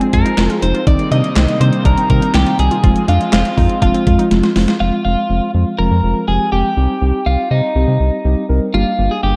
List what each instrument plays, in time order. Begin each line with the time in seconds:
Already playing: analog synth pad F3 G#3 C4, clean electric guitar G#4
0.01 synth arpeggio sound C4, closed hi-hat
0.13 analog synth bass F2, synth keys F3 G#3 C4 F4, clean electric guitar A#4, kick, closed hi-hat
0.25 synth arpeggio sound D#4, closed hi-hat
0.38 analog synth bass F1, synth keys F3 G#3 C4 F4, snare, clap, closed hi-hat
0.50 synth arpeggio sound F4, closed hi-hat
0.62 analog synth bass F1, synth keys F3 G#3 C4 D#4, clean electric guitar C5, closed hi-hat
0.74 synth arpeggio sound F4, closed hi-hat
0.87 analog synth bass C2, analog synth pad C3 G3 A#3 C4 D#4, synth keys D#3 G3 C4 D#4, synth arpeggio sound D#4, clean electric guitar D5, kick, closed hi-hat
0.99 closed hi-hat
1.11 analog synth bass C3, synth keys D#3 G3 C4 D#4, synth arpeggio sound D4, clean electric guitar D#5, closed hi-hat
1.24 closed hi-hat
1.36 analog synth bass C2, synth keys D#3 G3 C4 D4, synth arpeggio sound C4, snare, clap, closed hi-hat
1.48 closed hi-hat
1.60 analog synth bass C3, synth keys D#3 G3 C4 D4, synth arpeggio sound D#4, clean electric guitar C5, closed hi-hat
1.73 closed hi-hat
1.85 analog synth bass C2, synth keys D#3 G3 C4 D#4, synth arpeggio sound D4, clean electric guitar A#4, kick, closed hi-hat
1.97 synth arpeggio sound C4, closed hi-hat
2.10 analog synth bass C3, synth keys D#3 G3 C4 D#4, clean electric guitar A#4, kick, closed hi-hat
2.22 synth arpeggio sound D#4, closed hi-hat
2.34 analog synth bass C2, synth keys D#3 G3 C4 D#4, clean electric guitar G4, snare, clap, closed hi-hat
2.46 synth arpeggio sound F4, closed hi-hat
2.59 analog synth bass C2, synth keys D#3 G3 C4 D#4, clean electric guitar G#4, closed hi-hat
2.71 synth arpeggio sound F4, closed hi-hat
2.83 analog synth bass F1, analog synth pad F3 G#3 C4, synth keys F3 G#3 C4 F4, synth arpeggio sound F4, kick, closed hi-hat
2.96 closed hi-hat
3.08 analog synth bass F2, synth keys F3 G#3 C4 F4, synth arpeggio sound D4, clean electric guitar F4, closed hi-hat
3.21 closed hi-hat
3.32 analog synth bass F1, synth keys F3 G#3 C4 F4, synth arpeggio sound C4, clean electric guitar F4, snare, clap, closed hi-hat
3.45 closed hi-hat
3.57 analog synth bass F2, synth keys F3 G#3 C4 F4, synth arpeggio sound D#4, kick, open hi-hat
3.69 closed hi-hat
3.82 analog synth bass F1, synth keys F3 G#3 C4 F4, synth arpeggio sound D4, clean electric guitar F4, kick, closed hi-hat
3.94 synth arpeggio sound C4, closed hi-hat
4.07 analog synth bass F2, synth keys F3 G#3 C4 F4, kick, closed hi-hat
4.19 synth arpeggio sound D#4, closed hi-hat
4.31 analog synth bass F1, synth keys F3 G#3 C4 F4, snare, closed hi-hat
4.43 synth arpeggio sound F4, snare, closed hi-hat
4.56 analog synth bass F1, synth keys F3 G#3 C4 F4, snare, open hi-hat
4.68 synth arpeggio sound F4, snare, closed hi-hat
4.80 analog synth bass F1, synth keys F3 G#3 C4 F4, clean electric guitar F4
5.05 analog synth bass F1, synth keys F3 G#3 C4 F4, clean electric guitar F4
5.29 analog synth bass F1, synth keys F3 G#3 C4 F4
5.54 analog synth bass F2, synth keys F3 G#3 C4 F4
5.79 analog synth bass F1, synth keys F3 G#3 C4 F4, clean electric guitar A#4
5.91 analog synth bass F2
6.03 analog synth bass F1, synth keys F3 G#3 C4 F4
6.28 analog synth bass F1, synth keys F3 G#3 C4 G4, clean electric guitar G#4
6.52 analog synth bass F1, synth keys F3 G#3 C4 G4, clean electric guitar G4
6.77 analog synth bass C2, synth keys G3 C4 D#4 G4
7.01 analog synth bass C2, synth keys G3 C4 D#4 G4
7.26 analog synth bass C2, synth keys G3 C4 D#4 G4, clean electric guitar F4
7.51 analog synth bass C3, synth keys G3 C4 D#4 G4, clean electric guitar D#4
7.75 analog synth bass C2, synth keys G3 C4 D#4 G4
7.88 analog synth bass C3
8.00 analog synth bass C2, synth keys G3 C4 D#4 G4
8.25 analog synth bass C2, synth keys G3 C4 D#4 G4
8.49 analog synth bass C2, synth keys G3 C4 D#4 A#4
8.74 analog synth bass G1, synth keys G3 A#3 D4 G4, clean electric guitar F4
8.98 analog synth bass G1, synth keys G3 A#3 D4 G4
9.11 clean electric guitar G#4
9.23 analog synth bass G1, synth keys G3 A#3 D4 G4, clean electric guitar G4